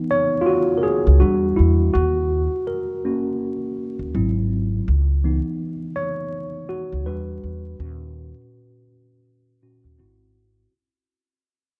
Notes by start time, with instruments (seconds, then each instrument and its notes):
Already playing: tine electric piano E3 B3 D#4
0.11 tine electric piano C#5
0.41 tine electric piano F4
0.46 tine electric piano F#4
0.78 tine electric piano A#4
0.83 tine electric piano G#4
1.07 upright bass C#2
1.20 upright bass E2, tine electric piano G3 D4 F#4
1.56 upright bass E2, tine electric piano E4
1.94 upright bass D#2, tine electric piano F#4
2.67 tine electric piano A#4
3.05 tine electric piano A#3 C#4 F#4
3.99 upright bass D#2
4.15 upright bass G#1, tine electric piano F#3 C4 E4
4.88 upright bass C#2
5.24 tine electric piano E3 B3 D#4
5.96 tine electric piano C#5
6.69 tine electric piano F#4
6.92 upright bass C#2
7.06 upright bass E2, tine electric piano G3 D4 F#4 B4
7.44 upright bass E2
7.79 upright bass D#2, tine electric piano A#2 C#4 F#4
9.63 tine electric piano A#2 C#4 F#4
9.84 upright bass D#2
9.99 upright bass G#1, tine electric piano C4 E4 F#4